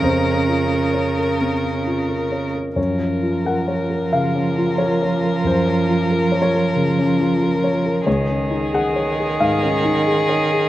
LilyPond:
<<
  \new Staff \with { instrumentName = "Grand piano" } { \time 4/4 \key ges \lydian \tempo 4 = 90 << { c''4 r2. | des''4 ges''4 f''4 des''4 | c''4. des''2~ des''8 | des''4 ges''4 f''2 | } \\ { \tuplet 3/2 { <f, bes'>8 des'8 f'8 bes'8 des''8 bes'8 c'8 des'8 f'8 bes'8 des''8 bes'8 } | \tuplet 3/2 { ges,8 des'8 f'8 bes'8 des''8 bes'8 des8 des'8 f'8 bes'8 des''8 bes'8 } | \tuplet 3/2 { ges,8 des'8 f'8 bes'8 des''8 bes'8 des8 des'8 f'8 bes'8 des''8 bes'8 } | \tuplet 3/2 { des,8 des'8 ees'8 aes'8 des''8 aes'8 aes,8 des'8 ees'8 aes'8 des''8 aes'8 } | } >> }
  \new Staff \with { instrumentName = "Violin" } { \time 4/4 \key ges \lydian bes'2.~ bes'8 r8 | bes'1~ | bes'1 | aes'1 | }
  \new Staff \with { instrumentName = "Cello" } { \clef bass \time 4/4 \key ges \lydian des2.~ des8 r8 | f1~ | f1 | ees1 | }
>>